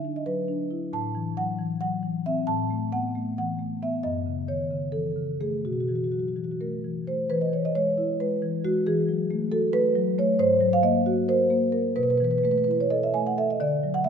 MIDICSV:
0, 0, Header, 1, 2, 480
1, 0, Start_track
1, 0, Key_signature, 4, "major"
1, 0, Tempo, 444444
1, 998, Time_signature, 7, 3, 24, 8
1, 4847, Tempo, 471328
1, 7727, Tempo, 442478
1, 11567, Tempo, 456274
1, 14972, End_track
2, 0, Start_track
2, 0, Title_t, "Marimba"
2, 0, Program_c, 0, 12
2, 0, Note_on_c, 0, 50, 59
2, 0, Note_on_c, 0, 76, 82
2, 50, Note_on_c, 0, 62, 45
2, 148, Note_off_c, 0, 76, 0
2, 175, Note_on_c, 0, 75, 61
2, 282, Note_on_c, 0, 54, 44
2, 282, Note_on_c, 0, 71, 71
2, 289, Note_off_c, 0, 75, 0
2, 428, Note_off_c, 0, 62, 0
2, 511, Note_off_c, 0, 71, 0
2, 522, Note_on_c, 0, 62, 51
2, 664, Note_off_c, 0, 54, 0
2, 762, Note_on_c, 0, 64, 48
2, 903, Note_off_c, 0, 62, 0
2, 954, Note_off_c, 0, 50, 0
2, 998, Note_off_c, 0, 64, 0
2, 1003, Note_on_c, 0, 45, 57
2, 1008, Note_on_c, 0, 81, 79
2, 1241, Note_on_c, 0, 52, 47
2, 1460, Note_off_c, 0, 81, 0
2, 1481, Note_on_c, 0, 54, 46
2, 1482, Note_on_c, 0, 78, 83
2, 1620, Note_off_c, 0, 52, 0
2, 1711, Note_on_c, 0, 52, 49
2, 1716, Note_off_c, 0, 54, 0
2, 1937, Note_off_c, 0, 78, 0
2, 1951, Note_on_c, 0, 78, 83
2, 1961, Note_on_c, 0, 54, 47
2, 2096, Note_off_c, 0, 52, 0
2, 2192, Note_on_c, 0, 52, 49
2, 2342, Note_off_c, 0, 54, 0
2, 2414, Note_off_c, 0, 78, 0
2, 2441, Note_on_c, 0, 76, 79
2, 2442, Note_on_c, 0, 60, 56
2, 2578, Note_off_c, 0, 52, 0
2, 2635, Note_off_c, 0, 45, 0
2, 2668, Note_on_c, 0, 81, 90
2, 2669, Note_off_c, 0, 76, 0
2, 2675, Note_on_c, 0, 45, 64
2, 2679, Note_off_c, 0, 60, 0
2, 2920, Note_on_c, 0, 57, 46
2, 3134, Note_off_c, 0, 81, 0
2, 3158, Note_on_c, 0, 78, 79
2, 3161, Note_on_c, 0, 59, 47
2, 3305, Note_off_c, 0, 57, 0
2, 3401, Note_off_c, 0, 59, 0
2, 3405, Note_on_c, 0, 57, 49
2, 3623, Note_off_c, 0, 78, 0
2, 3652, Note_on_c, 0, 52, 45
2, 3652, Note_on_c, 0, 78, 79
2, 3790, Note_off_c, 0, 57, 0
2, 3878, Note_on_c, 0, 57, 47
2, 4033, Note_off_c, 0, 52, 0
2, 4110, Note_off_c, 0, 78, 0
2, 4131, Note_on_c, 0, 59, 50
2, 4132, Note_on_c, 0, 76, 78
2, 4266, Note_off_c, 0, 57, 0
2, 4322, Note_off_c, 0, 45, 0
2, 4357, Note_on_c, 0, 75, 79
2, 4360, Note_off_c, 0, 76, 0
2, 4360, Note_on_c, 0, 42, 61
2, 4369, Note_off_c, 0, 59, 0
2, 4602, Note_on_c, 0, 49, 42
2, 4824, Note_off_c, 0, 75, 0
2, 4841, Note_on_c, 0, 51, 41
2, 4843, Note_on_c, 0, 73, 66
2, 4984, Note_off_c, 0, 49, 0
2, 5071, Note_on_c, 0, 49, 45
2, 5074, Note_off_c, 0, 51, 0
2, 5288, Note_on_c, 0, 69, 67
2, 5289, Note_off_c, 0, 73, 0
2, 5290, Note_on_c, 0, 52, 42
2, 5447, Note_off_c, 0, 49, 0
2, 5536, Note_on_c, 0, 49, 45
2, 5679, Note_off_c, 0, 52, 0
2, 5756, Note_off_c, 0, 69, 0
2, 5780, Note_on_c, 0, 57, 45
2, 5783, Note_on_c, 0, 68, 67
2, 5928, Note_off_c, 0, 49, 0
2, 5988, Note_off_c, 0, 42, 0
2, 6021, Note_off_c, 0, 68, 0
2, 6029, Note_off_c, 0, 57, 0
2, 6029, Note_on_c, 0, 47, 51
2, 6030, Note_on_c, 0, 66, 52
2, 6108, Note_off_c, 0, 66, 0
2, 6108, Note_on_c, 0, 66, 43
2, 6188, Note_off_c, 0, 66, 0
2, 6188, Note_on_c, 0, 66, 44
2, 6263, Note_off_c, 0, 66, 0
2, 6263, Note_on_c, 0, 66, 40
2, 6273, Note_on_c, 0, 52, 36
2, 6341, Note_off_c, 0, 66, 0
2, 6341, Note_on_c, 0, 66, 46
2, 6429, Note_off_c, 0, 66, 0
2, 6429, Note_on_c, 0, 66, 44
2, 6506, Note_off_c, 0, 66, 0
2, 6506, Note_on_c, 0, 66, 46
2, 6525, Note_on_c, 0, 54, 35
2, 6585, Note_off_c, 0, 66, 0
2, 6585, Note_on_c, 0, 66, 41
2, 6667, Note_off_c, 0, 52, 0
2, 6674, Note_off_c, 0, 66, 0
2, 6674, Note_on_c, 0, 66, 44
2, 6755, Note_on_c, 0, 52, 39
2, 6759, Note_off_c, 0, 66, 0
2, 6759, Note_on_c, 0, 66, 40
2, 6769, Note_off_c, 0, 54, 0
2, 6837, Note_off_c, 0, 66, 0
2, 6837, Note_on_c, 0, 66, 43
2, 6911, Note_off_c, 0, 66, 0
2, 6911, Note_on_c, 0, 66, 42
2, 6970, Note_off_c, 0, 66, 0
2, 7005, Note_on_c, 0, 70, 58
2, 7007, Note_on_c, 0, 57, 38
2, 7148, Note_off_c, 0, 52, 0
2, 7244, Note_on_c, 0, 52, 39
2, 7393, Note_off_c, 0, 57, 0
2, 7469, Note_off_c, 0, 70, 0
2, 7481, Note_on_c, 0, 57, 43
2, 7481, Note_on_c, 0, 72, 69
2, 7632, Note_off_c, 0, 52, 0
2, 7686, Note_off_c, 0, 47, 0
2, 7708, Note_on_c, 0, 71, 82
2, 7713, Note_off_c, 0, 72, 0
2, 7714, Note_on_c, 0, 52, 61
2, 7723, Note_off_c, 0, 57, 0
2, 7831, Note_on_c, 0, 75, 66
2, 7840, Note_off_c, 0, 71, 0
2, 7947, Note_off_c, 0, 52, 0
2, 7960, Note_on_c, 0, 52, 47
2, 7962, Note_on_c, 0, 73, 58
2, 7963, Note_off_c, 0, 75, 0
2, 8090, Note_off_c, 0, 73, 0
2, 8090, Note_on_c, 0, 75, 81
2, 8199, Note_on_c, 0, 56, 53
2, 8202, Note_on_c, 0, 73, 88
2, 8214, Note_off_c, 0, 75, 0
2, 8356, Note_off_c, 0, 52, 0
2, 8444, Note_on_c, 0, 64, 56
2, 8595, Note_off_c, 0, 56, 0
2, 8673, Note_off_c, 0, 73, 0
2, 8688, Note_on_c, 0, 71, 75
2, 8690, Note_on_c, 0, 56, 51
2, 8835, Note_off_c, 0, 64, 0
2, 8928, Note_on_c, 0, 52, 55
2, 9077, Note_off_c, 0, 56, 0
2, 9152, Note_off_c, 0, 71, 0
2, 9169, Note_on_c, 0, 56, 59
2, 9169, Note_on_c, 0, 66, 84
2, 9315, Note_off_c, 0, 52, 0
2, 9402, Note_off_c, 0, 66, 0
2, 9408, Note_on_c, 0, 68, 78
2, 9410, Note_on_c, 0, 52, 68
2, 9412, Note_off_c, 0, 56, 0
2, 9645, Note_on_c, 0, 54, 52
2, 9886, Note_on_c, 0, 57, 61
2, 10035, Note_off_c, 0, 54, 0
2, 10103, Note_off_c, 0, 68, 0
2, 10113, Note_on_c, 0, 69, 86
2, 10116, Note_on_c, 0, 66, 62
2, 10274, Note_off_c, 0, 57, 0
2, 10346, Note_on_c, 0, 57, 58
2, 10348, Note_on_c, 0, 71, 111
2, 10353, Note_off_c, 0, 69, 0
2, 10506, Note_off_c, 0, 66, 0
2, 10590, Note_on_c, 0, 54, 69
2, 10741, Note_off_c, 0, 57, 0
2, 10818, Note_off_c, 0, 71, 0
2, 10838, Note_on_c, 0, 57, 75
2, 10842, Note_on_c, 0, 73, 95
2, 10983, Note_off_c, 0, 54, 0
2, 11042, Note_off_c, 0, 52, 0
2, 11064, Note_on_c, 0, 44, 75
2, 11066, Note_on_c, 0, 72, 106
2, 11074, Note_off_c, 0, 73, 0
2, 11082, Note_off_c, 0, 57, 0
2, 11301, Note_on_c, 0, 54, 67
2, 11421, Note_off_c, 0, 72, 0
2, 11432, Note_on_c, 0, 77, 105
2, 11538, Note_on_c, 0, 58, 78
2, 11542, Note_on_c, 0, 75, 97
2, 11561, Note_off_c, 0, 77, 0
2, 11698, Note_off_c, 0, 54, 0
2, 11784, Note_on_c, 0, 66, 73
2, 11933, Note_off_c, 0, 58, 0
2, 12010, Note_off_c, 0, 75, 0
2, 12017, Note_on_c, 0, 70, 68
2, 12022, Note_on_c, 0, 72, 102
2, 12173, Note_off_c, 0, 66, 0
2, 12248, Note_on_c, 0, 58, 65
2, 12408, Note_off_c, 0, 70, 0
2, 12480, Note_on_c, 0, 70, 71
2, 12647, Note_off_c, 0, 58, 0
2, 12705, Note_off_c, 0, 44, 0
2, 12720, Note_off_c, 0, 72, 0
2, 12726, Note_on_c, 0, 71, 89
2, 12728, Note_on_c, 0, 47, 65
2, 12741, Note_off_c, 0, 70, 0
2, 12803, Note_off_c, 0, 71, 0
2, 12803, Note_on_c, 0, 71, 74
2, 12878, Note_off_c, 0, 71, 0
2, 12878, Note_on_c, 0, 71, 73
2, 12954, Note_off_c, 0, 71, 0
2, 12954, Note_on_c, 0, 71, 70
2, 12985, Note_on_c, 0, 52, 52
2, 13027, Note_off_c, 0, 71, 0
2, 13027, Note_on_c, 0, 71, 75
2, 13096, Note_off_c, 0, 71, 0
2, 13096, Note_on_c, 0, 71, 70
2, 13171, Note_off_c, 0, 71, 0
2, 13171, Note_on_c, 0, 71, 74
2, 13229, Note_on_c, 0, 57, 60
2, 13242, Note_off_c, 0, 71, 0
2, 13242, Note_on_c, 0, 71, 73
2, 13309, Note_off_c, 0, 71, 0
2, 13309, Note_on_c, 0, 71, 77
2, 13377, Note_off_c, 0, 71, 0
2, 13377, Note_on_c, 0, 71, 68
2, 13383, Note_off_c, 0, 52, 0
2, 13445, Note_off_c, 0, 71, 0
2, 13445, Note_on_c, 0, 71, 75
2, 13485, Note_on_c, 0, 64, 52
2, 13517, Note_off_c, 0, 71, 0
2, 13517, Note_on_c, 0, 71, 68
2, 13558, Note_off_c, 0, 71, 0
2, 13618, Note_on_c, 0, 73, 72
2, 13625, Note_off_c, 0, 57, 0
2, 13722, Note_on_c, 0, 75, 81
2, 13728, Note_on_c, 0, 69, 58
2, 13734, Note_off_c, 0, 73, 0
2, 13846, Note_off_c, 0, 75, 0
2, 13858, Note_on_c, 0, 76, 74
2, 13872, Note_off_c, 0, 64, 0
2, 13968, Note_on_c, 0, 80, 80
2, 13973, Note_on_c, 0, 57, 53
2, 13974, Note_off_c, 0, 76, 0
2, 14090, Note_off_c, 0, 80, 0
2, 14102, Note_on_c, 0, 78, 76
2, 14114, Note_off_c, 0, 69, 0
2, 14218, Note_off_c, 0, 78, 0
2, 14218, Note_on_c, 0, 69, 55
2, 14223, Note_on_c, 0, 76, 91
2, 14339, Note_off_c, 0, 76, 0
2, 14353, Note_on_c, 0, 75, 75
2, 14358, Note_off_c, 0, 57, 0
2, 14395, Note_off_c, 0, 47, 0
2, 14454, Note_on_c, 0, 50, 69
2, 14456, Note_off_c, 0, 69, 0
2, 14458, Note_on_c, 0, 74, 87
2, 14463, Note_off_c, 0, 75, 0
2, 14701, Note_on_c, 0, 54, 53
2, 14798, Note_off_c, 0, 74, 0
2, 14813, Note_on_c, 0, 78, 92
2, 14920, Note_on_c, 0, 57, 63
2, 14920, Note_on_c, 0, 76, 95
2, 14929, Note_off_c, 0, 78, 0
2, 14972, Note_off_c, 0, 50, 0
2, 14972, Note_off_c, 0, 54, 0
2, 14972, Note_off_c, 0, 57, 0
2, 14972, Note_off_c, 0, 76, 0
2, 14972, End_track
0, 0, End_of_file